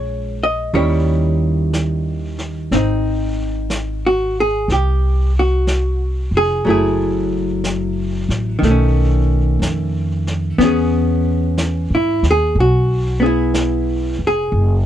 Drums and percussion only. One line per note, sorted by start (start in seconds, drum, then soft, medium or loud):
0.73 brush sweep soft
1.73 brush sweep soft
1.73 snare soft
1.73 hi-hat pedal medium
2.38 snare soft
2.72 brush sweep soft
2.72 snare soft
3.70 brush sweep soft
3.70 snare soft
3.70 hi-hat pedal medium
4.69 brush sweep soft
4.69 snare soft
5.67 brush sweep soft
5.67 snare soft
5.67 hi-hat pedal soft
6.66 brush sweep soft
7.64 brush sweep soft
7.64 snare soft
7.64 hi-hat pedal soft
8.30 snare soft
8.63 brush sweep soft
8.63 snare soft
9.62 brush sweep soft
9.62 snare soft
9.62 hi-hat pedal soft
10.27 snare soft
10.60 brush sweep soft
10.60 snare soft
11.58 brush sweep soft
11.58 snare soft
11.58 hi-hat pedal soft
12.23 snare soft
12.56 brush sweep soft
13.54 brush sweep soft
13.54 snare soft
13.54 hi-hat pedal soft
14.52 brush sweep soft